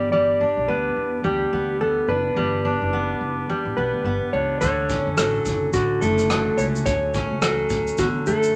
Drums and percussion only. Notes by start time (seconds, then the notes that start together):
4.61 kick, shaker
4.89 kick, shaker
5.18 cross-stick, shaker
5.45 kick, shaker
5.73 kick, shaker
6.02 shaker
6.18 cross-stick, shaker
6.30 cross-stick, shaker
6.58 shaker
6.76 shaker
6.86 kick, shaker
7.14 kick, shaker
7.42 cross-stick, shaker
7.70 kick, shaker
7.87 shaker
7.98 kick, shaker
8.27 shaker
8.43 shaker